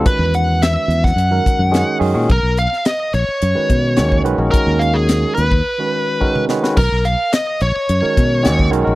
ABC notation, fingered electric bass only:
X:1
M:4/4
L:1/16
Q:1/4=107
K:B
V:1 name="Fingered electric bass" clef=bass
z E,,4- E,, E,,2 F,,2 z F,,2 z F,, A,, | B,,, B,,,2 z3 A,,, z F,, z B,,2 D,,2 B,,, A,,, | z D,,4- D,, D,,2 z8 | B,,, B,,,2 z3 A,,, z F,, z B,,2 D,,2 B,,, A,,, |]